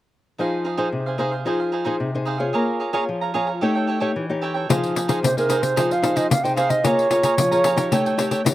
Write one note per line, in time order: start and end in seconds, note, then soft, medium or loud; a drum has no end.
0.38 0.90 F3 medium
0.38 0.63 D#4 medium
0.38 0.64 D#4 soft
0.38 0.64 G#4 soft
0.38 0.65 G#4 soft
0.38 0.65 C5 soft
0.38 0.64 C5 medium
0.38 0.65 F5 medium
0.64 0.76 D#4 soft
0.64 0.76 G#4 soft
0.64 0.77 C5 soft
0.64 0.77 F5 soft
0.77 0.88 D#4 medium
0.77 1.15 D#4 soft
0.77 0.88 G#4 medium
0.77 1.15 G#4 medium
0.77 0.88 C5 medium
0.77 1.15 C5 medium
0.77 0.88 F5 medium
0.92 1.44 C3 medium
1.06 1.18 G#4 soft
1.06 1.18 C5 soft
1.06 1.19 F5 soft
1.18 1.31 D#4 medium
1.18 1.35 D#4 soft
1.18 1.35 G#4 soft
1.18 1.32 G#4 medium
1.18 1.35 C5 medium
1.18 1.31 C5 medium
1.18 1.30 F5 medium
1.31 1.45 G#4 soft
1.31 1.45 C5 soft
1.31 1.45 F5 soft
1.45 1.97 F3 medium
1.45 1.59 D#4 medium
1.45 1.82 D#4 soft
1.45 1.82 G#4 soft
1.45 1.59 G#4 medium
1.45 1.83 C5 soft
1.45 1.59 C5 medium
1.45 1.59 F5 medium
1.60 1.71 G#4 soft
1.60 1.72 C5 soft
1.60 1.72 F5 soft
1.72 1.83 D#4 soft
1.72 1.84 G#4 soft
1.72 1.84 C5 soft
1.72 1.85 F5 soft
1.85 1.95 D#4 medium
1.85 2.09 D#4 medium
1.85 1.95 G#4 medium
1.85 2.09 G#4 soft
1.85 1.95 C5 medium
1.85 2.10 C5 medium
1.85 1.96 F5 medium
2.00 2.51 C3 medium
2.15 2.37 D#4 soft
2.15 2.37 G#4 medium
2.15 2.37 C5 medium
2.25 2.39 D#4 medium
2.25 2.39 G#4 medium
2.25 2.38 C5 medium
2.25 2.37 F5 medium
2.38 2.90 F4 medium
2.38 2.90 G#4 medium
2.38 2.52 G#4 soft
2.38 2.53 C5 soft
2.38 2.90 C#5 medium
2.38 2.52 F5 soft
2.53 3.06 A#3 medium
2.53 2.79 G#4 medium
2.53 2.79 C#5 medium
2.53 2.80 F5 medium
2.53 2.81 A#5 medium
2.80 2.92 G#4 soft
2.80 2.92 C#5 soft
2.80 2.93 F5 soft
2.80 2.93 A#5 soft
2.93 3.30 F4 medium
2.93 3.03 G#4 medium
2.93 3.30 G#4 soft
2.93 3.03 C#5 medium
2.93 3.30 C#5 medium
2.93 3.03 F5 medium
2.93 3.04 A#5 medium
3.09 3.60 F3 medium
3.21 3.33 C#5 soft
3.21 3.34 F5 soft
3.21 3.34 A#5 soft
3.34 3.51 F4 soft
3.34 3.47 G#4 medium
3.34 3.51 G#4 soft
3.34 3.47 C#5 medium
3.34 3.51 C#5 soft
3.34 3.47 F5 medium
3.34 3.46 A#5 medium
3.47 3.61 C#5 soft
3.47 3.61 F5 soft
3.47 3.60 A#5 soft
3.61 4.13 A3 medium
3.61 3.98 D#4 medium
3.61 3.74 G4 medium
3.61 3.98 G4 soft
3.61 3.74 A4 medium
3.61 3.75 C#5 medium
3.61 3.99 C#5 soft
3.61 3.74 G5 medium
3.75 3.87 A4 soft
3.75 3.88 C#5 soft
3.75 3.88 G5 soft
3.87 3.99 G4 soft
3.87 3.99 A4 soft
3.87 4.00 C#5 soft
3.87 4.00 G5 soft
4.00 4.25 D#4 medium
4.00 4.10 G4 medium
4.00 4.25 G4 medium
4.00 4.10 A4 medium
4.00 4.11 C#5 medium
4.00 4.25 C#5 medium
4.00 4.11 G5 medium
4.16 4.67 E3 medium
4.30 4.65 D#4 medium
4.30 4.66 G4 medium
4.30 4.66 C#5 medium
4.41 4.54 G4 medium
4.41 4.55 A4 medium
4.41 4.54 C#5 medium
4.41 4.53 G5 medium
4.54 4.69 A4 soft
4.54 4.68 C#5 soft
4.54 4.68 G5 soft
4.69 5.21 F3 medium
4.69 4.94 D#4 medium
4.69 4.95 D#4 soft
4.69 4.95 G#4 medium
4.69 4.95 C5 medium
4.69 4.96 F5 medium
4.69 pandeiro medium
4.83 pandeiro soft
4.95 5.07 D#4 soft
4.95 5.07 G#4 soft
4.95 5.08 C5 soft
4.95 5.09 F5 soft
4.95 pandeiro medium
5.08 5.18 D#4 medium
5.08 5.32 D#4 medium
5.08 5.18 G#4 medium
5.08 5.32 G#4 medium
5.08 5.19 C5 medium
5.08 5.32 C5 medium
5.08 5.19 F5 medium
5.08 pandeiro medium
5.23 5.74 C3 medium
5.23 5.36 C5 medium
5.23 pandeiro medium
5.37 5.73 D#4 soft
5.37 5.73 G#4 medium
5.37 5.49 G#4 soft
5.37 5.65 A#4 medium
5.37 5.49 C5 soft
5.37 5.74 C5 medium
5.37 5.49 F5 soft
5.37 pandeiro soft
5.49 5.62 D#4 medium
5.49 5.62 G#4 medium
5.49 5.61 C5 medium
5.49 5.60 F5 medium
5.49 pandeiro medium
5.61 5.76 G#4 soft
5.61 5.75 C5 soft
5.61 5.94 C5 medium
5.61 5.75 F5 soft
5.61 pandeiro soft
5.76 6.28 F3 medium
5.76 5.89 D#4 medium
5.76 5.93 D#4 soft
5.76 5.89 G#4 medium
5.76 5.93 G#4 soft
5.76 5.93 C5 medium
5.76 5.90 C5 medium
5.76 5.89 F5 medium
5.76 pandeiro medium
5.91 6.02 G#4 soft
5.91 6.02 C5 soft
5.91 6.03 F5 soft
5.91 6.18 F5 medium
5.91 pandeiro soft
6.02 6.28 D#4 medium
6.02 6.15 D#4 soft
6.02 6.29 G#4 soft
6.02 6.15 G#4 soft
6.02 6.29 C5 medium
6.02 6.15 C5 medium
6.02 6.16 F5 medium
6.02 pandeiro medium
6.16 6.26 D#4 medium
6.16 6.26 G#4 medium
6.16 6.26 C5 medium
6.16 6.30 D#5 medium
6.16 6.26 F5 medium
6.16 pandeiro medium
6.30 6.82 C3 medium
6.30 6.45 F5 medium
6.30 pandeiro medium
6.44 6.80 D#4 medium
6.44 6.80 G#4 medium
6.44 6.80 C5 medium
6.44 6.56 G5 medium
6.44 pandeiro soft
6.56 6.69 D#4 medium
6.56 6.70 G#4 medium
6.56 6.69 C5 medium
6.56 6.71 F5 medium
6.56 6.68 F5 medium
6.56 pandeiro soft
6.69 6.83 G#4 soft
6.69 6.83 C5 soft
6.69 6.86 D#5 medium
6.69 6.82 F5 soft
6.69 pandeiro soft
6.84 7.35 A#3 medium
6.84 7.07 F4 medium
6.84 7.07 G#4 medium
6.84 7.09 G#4 medium
6.84 8.54 C#5 medium
6.84 7.07 C#5 medium
6.84 7.10 C#5 medium
6.84 7.11 F5 medium
6.84 7.11 A#5 medium
6.84 pandeiro medium
6.99 pandeiro soft
7.10 7.36 F4 soft
7.10 7.23 G#4 soft
7.10 7.36 G#4 soft
7.10 7.23 C#5 soft
7.10 7.37 C#5 medium
7.10 7.24 F5 soft
7.10 7.24 A#5 soft
7.10 pandeiro medium
7.23 7.33 G#4 medium
7.23 7.34 C#5 medium
7.23 7.34 F5 medium
7.23 7.34 A#5 medium
7.23 pandeiro medium
7.37 7.89 F3 medium
7.37 pandeiro medium
7.51 7.74 F4 medium
7.51 7.74 G#4 soft
7.51 7.74 C#5 medium
7.51 7.64 C#5 soft
7.51 7.64 F5 soft
7.51 7.64 A#5 medium
7.51 pandeiro soft
7.64 7.77 G#4 medium
7.64 7.77 C#5 medium
7.64 7.77 F5 medium
7.64 7.76 A#5 medium
7.64 pandeiro medium
7.76 8.13 D#4 medium
7.76 8.14 G4 medium
7.76 8.14 C#5 medium
7.76 7.91 C#5 soft
7.76 7.91 F5 soft
7.76 7.90 A#5 soft
7.76 pandeiro medium
7.91 8.43 A3 medium
7.91 8.04 G4 medium
7.91 8.04 A4 medium
7.91 8.05 C#5 medium
7.91 8.04 G5 medium
7.91 pandeiro medium
8.05 8.18 A4 soft
8.05 8.18 C#5 soft
8.05 8.18 G5 soft
8.05 pandeiro soft
8.17 8.41 D#4 medium
8.17 8.30 G4 soft
8.17 8.41 G4 medium
8.17 8.30 A4 soft
8.17 8.41 C#5 medium
8.17 8.30 C#5 medium
8.17 8.31 G5 medium
8.17 pandeiro medium
8.31 8.41 G4 medium
8.31 8.41 A4 medium
8.31 8.41 C#5 medium
8.31 8.41 G5 medium
8.31 pandeiro soft
8.45 8.54 E3 medium
8.45 8.54 D#4 soft
8.45 8.54 G4 soft
8.45 8.54 C#5 medium
8.45 pandeiro medium